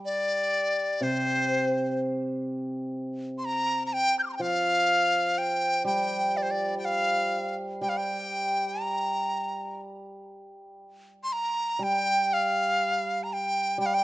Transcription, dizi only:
0.05 1.04 D5 medium
1.03 2.00 C5 medium
3.38 3.47 C6 medium
3.45 3.86 A#5 medium
3.86 3.95 A#5 medium
3.93 4.18 G5 medium
4.19 4.23 G6 soft
4.23 4.29 D6 soft
4.23 4.26 F6 soft
4.29 4.36 A#5 medium
4.29 4.32 C6 soft
4.37 4.43 G5 soft
4.41 5.40 F5 medium
5.38 5.86 G5 medium
5.86 6.38 G5 medium
6.37 6.44 D5 medium
6.43 6.52 C5 medium
6.51 6.78 D5 medium
6.78 6.86 G5 medium
6.85 7.56 F5 medium
7.82 7.91 G5 medium
7.89 7.99 F5 medium
7.97 8.83 G5 medium
8.81 9.80 A#5 medium
11.24 11.34 C6 medium
11.33 11.85 A#5 medium
11.83 12.35 G5 medium
12.33 13.25 F5 medium
13.23 13.35 A#5 medium
13.33 13.80 G5 medium
13.81 13.87 G5 medium
13.86 13.96 F5 medium
13.94 14.04 G5 medium

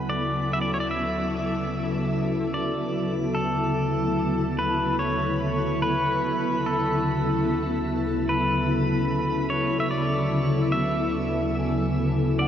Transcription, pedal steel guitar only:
0.10 0.51 D5 medium
0.53 0.61 E5 medium
0.61 0.70 D5 medium
0.74 0.80 C#5 medium
0.80 0.89 D5 medium
0.91 2.54 E5 loud
2.54 3.12 D5 medium
3.35 4.62 A4 medium
4.59 4.99 B4 medium
4.99 5.82 C#5 medium
5.82 6.66 B4 medium
6.66 7.83 A4 medium
8.29 9.53 B4 medium
9.50 9.80 C#5 medium
9.80 9.88 E5 medium
9.91 10.72 D5 medium
10.72 12.39 E5 loud
12.39 12.48 D5 medium

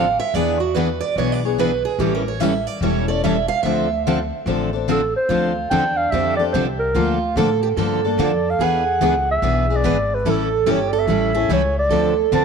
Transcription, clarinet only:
4.91 5.14 A4 medium
5.16 5.54 C5 loud
5.70 5.98 G5 loud
5.97 6.12 F5 medium
6.11 6.36 E5 loud
6.37 6.44 D5 medium
6.53 6.65 C5 medium
6.79 7.18 A#4 medium
8.23 8.52 D5 medium
8.50 8.65 F5 medium
8.63 9.29 F#5 medium
9.31 9.77 E5 loud
9.76 10.16 D5 medium
10.14 10.32 B4 medium
10.30 10.73 A4 medium
10.71 10.91 C#5 medium
10.89 11.01 D5 medium
10.99 11.52 E5 loud
11.53 11.76 C#5 medium
11.79 12.16 D5 medium
12.34 12.45 A5 medium

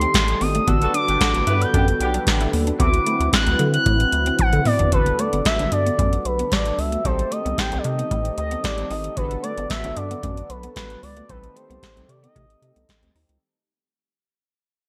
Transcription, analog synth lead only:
0.00 0.43 C6 loud
0.41 0.69 D#6 loud
0.68 0.94 E6 loud
0.94 1.63 D6 loud
1.61 2.14 G6 loud
2.80 3.30 D6 loud
3.33 3.71 F#6 loud
3.74 4.35 F#6 loud
4.40 4.64 F#5 loud
4.66 4.91 D5 medium
4.93 5.21 B4 loud
5.19 5.45 D5 medium
5.46 5.70 E5 loud
5.72 6.27 D5 loud
6.25 6.54 B4 medium
6.52 6.80 D5 loud
6.79 7.07 E5 loud
7.05 7.33 C5 loud
7.31 7.59 D#5 loud
7.58 7.79 G5 loud
7.78 7.86 D5 medium
7.84 8.37 D#5 loud
8.37 8.65 D#5 medium
8.64 8.91 D5 loud
8.90 9.18 D#5 loud
9.16 9.42 B4 loud
9.43 9.68 D5 loud
9.69 9.98 E5 loud
9.96 10.51 D5 loud
10.49 10.75 B4 medium
10.76 11.01 B4 medium
11.02 11.31 D5 medium
11.29 11.57 B4 loud
11.56 12.11 C5 loud
12.09 12.22 D5 medium
12.23 13.11 D#5 medium

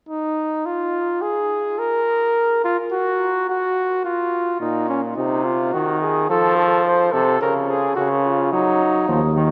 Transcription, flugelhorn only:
0.09 0.67 D#4 medium
0.66 1.23 F4 medium
1.22 1.80 G#4 medium
1.79 2.64 A#4 medium
2.64 2.77 F4 medium
2.92 3.48 F#4 medium
3.49 4.04 F#4 medium
4.05 4.59 F4 medium
4.60 4.88 D#4 medium
4.89 5.01 C#4 medium
5.17 5.46 D#4 medium
5.45 5.75 F4 medium
5.73 6.01 F#4 medium
6.02 6.29 G#4 medium
6.30 6.56 A4 medium
6.57 6.84 A4 medium
6.85 7.14 C5 medium
7.13 7.41 A4 medium
7.41 7.54 A#4 medium
7.68 7.95 G#4 medium
7.96 8.09 F#4 medium
8.24 8.54 F4 medium
8.52 9.36 D#4 medium

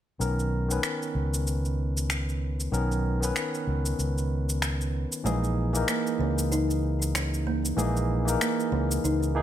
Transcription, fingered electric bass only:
0.20 0.78 B1 medium
1.15 2.67 C#2 medium
2.72 3.30 B1 medium
3.67 3.92 C#2 medium
3.99 5.04 C#2 medium
5.25 5.83 A#1 medium
6.19 7.72 C#2 medium
7.77 8.35 A#1 medium
8.72 8.97 C#2 medium
9.04 9.42 C#2 medium

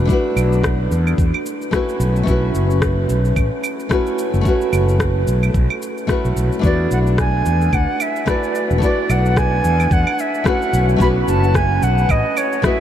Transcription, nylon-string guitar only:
0.05 1.68 A3 medium
0.05 1.69 D4 medium
0.09 1.70 E4 medium
0.09 1.71 F#4 medium
0.09 1.72 B4 medium
1.71 2.22 A3 medium
1.71 2.24 C#4 medium
1.71 2.25 E4 medium
1.71 2.25 F#4 medium
1.71 2.26 B4 medium
2.23 3.86 A3 medium
2.23 3.87 C#4 medium
2.27 3.88 E4 medium
2.27 3.89 F#4 medium
2.27 3.90 B4 medium
3.89 4.40 A3 medium
3.89 4.42 C#4 medium
3.89 4.43 E4 medium
3.89 4.43 F#4 medium
3.89 4.44 B4 medium
4.41 6.04 A3 medium
4.41 6.05 C#4 medium
4.41 6.06 E4 medium
4.47 6.07 F#4 medium
4.47 6.08 B4 medium
6.07 6.58 A3 medium
6.07 6.60 C#4 medium
6.07 6.61 E4 medium
6.07 6.61 F#4 medium
6.07 6.62 B4 medium
6.59 8.22 A3 medium
6.59 8.23 D4 medium
6.59 8.24 E4 medium
6.65 8.25 F#4 medium
6.65 8.26 B4 medium
8.26 8.77 A3 medium
8.26 8.79 D4 medium
8.26 8.79 E4 medium
8.26 8.80 F#4 medium
8.26 8.80 B4 medium
8.78 10.41 A3 medium
8.78 10.42 D4 medium
8.78 10.43 E4 medium
8.84 10.44 F#4 medium
8.84 10.45 B4 medium
10.44 10.95 A3 medium
10.44 10.97 C#4 medium
10.44 10.97 E4 medium
10.44 10.98 F#4 medium
10.48 10.99 B4 medium
10.96 12.59 A3 medium
10.96 12.60 C#4 medium
10.96 12.61 E4 medium
11.02 12.62 F#4 medium
11.02 12.63 B4 loud
12.62 12.80 A3 medium
12.62 12.80 C#4 medium
12.62 12.80 E4 medium
12.62 12.80 F#4 medium
12.62 12.80 B4 medium

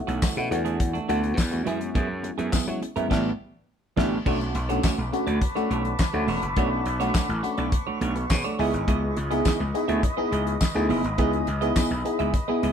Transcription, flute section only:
4.27 8.55 B4 medium
4.27 8.55 A5 medium
4.27 10.86 C#6 medium
4.27 8.55 D6 medium
8.59 12.72 B4 medium
8.59 12.72 D#5 medium
8.59 12.72 D#6 medium
10.91 12.72 B5 medium

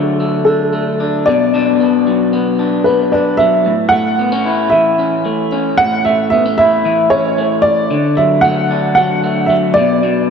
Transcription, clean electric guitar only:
0.00 1.27 D3 medium
0.00 2.07 F#3 medium
0.00 0.19 A3 medium
0.00 0.46 D4 medium
0.20 0.72 A3 medium
0.47 1.00 D4 medium
0.73 1.32 A3 medium
1.00 1.54 D4 medium
1.27 1.53 B2 medium
1.54 3.66 B2 medium
1.54 2.58 D4 medium
1.80 2.32 B3 medium
2.07 3.39 F#3 medium
2.33 2.85 B3 medium
2.59 3.12 D4 medium
2.86 3.71 B3 medium
3.13 3.71 D4 medium
3.40 3.72 F#3 medium
3.66 5.78 A2 medium
3.92 5.25 A3 medium
4.19 4.32 B3 medium
4.32 4.98 C#4 soft
4.45 6.58 E4 medium
4.72 6.84 E3 medium
4.99 5.51 C#4 medium
5.25 6.05 A3 medium
5.52 6.32 C#4 medium
5.79 7.91 A2 medium
6.06 7.38 A3 medium
6.32 6.46 B3 medium
6.46 7.11 C#4 soft
6.59 7.97 E4 medium
6.85 7.90 E3 medium
7.12 7.65 C#4 medium
7.38 7.97 A3 medium
7.91 9.77 D3 medium
8.17 8.97 F#3 medium
8.44 9.22 A3 medium
8.71 10.30 D4 medium
8.97 9.50 F#3 medium
9.24 9.82 A3 medium
9.50 10.30 F#3 medium
9.77 10.02 B2 medium
10.03 10.30 B2 medium

